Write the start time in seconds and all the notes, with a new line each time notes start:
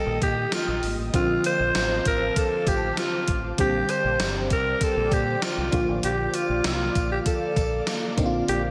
Already playing: D#3 G3 A#3 G4 A4 D#5 G5 D#6
0.06 A#1
0.22 A#2 G4, kick, closed hi-hat, tambourine
0.52 F4, snare, closed hi-hat, tambourine
0.68 A#1
0.83 G#1, open hi-hat, tambourine
0.98 A1
1.13 A#1 D3 F3 C4 F4 C5 F5 A5 D6, kick, closed hi-hat, tambourine
1.44 C5, closed hi-hat, tambourine
1.60 A#1
1.75 A1, snare, closed hi-hat, tambourine
2.05 A1 A#4, kick, closed hi-hat, tambourine
2.36 A4, kick, closed hi-hat, tambourine
2.67 A1 G4, kick, closed hi-hat, tambourine
2.97 F4, snare, closed hi-hat, tambourine
3.28 A1, kick, closed hi-hat
3.58 A#1 D3 G3 C4 G4 C5 D5 G5, kick, closed hi-hat
3.89 C5, closed hi-hat, tambourine
4.05 A#1
4.20 G1, snare, closed hi-hat, tambourine
4.50 C2 A#4, kick, closed hi-hat, tambourine
4.81 A4, kick, closed hi-hat, tambourine
4.97 A#1
5.11 A#2 G4, kick, closed hi-hat, tambourine
5.42 F4, snare, closed hi-hat, tambourine
5.58 C2
5.72 A#1 D3 F3 A#3 F4 F5, kick, closed hi-hat, tambourine
5.89 A1
6.03 A#1 G4, closed hi-hat
6.34 F4, closed hi-hat, tambourine
6.49 A#1
6.64 C2 F4, snare, closed hi-hat, tambourine
6.95 A#1, kick, closed hi-hat, tambourine
7.12 G4
7.26 A4, kick, closed hi-hat, tambourine
7.56 A#1, kick, closed hi-hat, tambourine
7.87 snare, closed hi-hat, tambourine
8.17 A#1 D3 A#3 C4 D#4 C6, kick, closed hi-hat, tambourine
8.26 F4
8.48 A#1 G4, closed hi-hat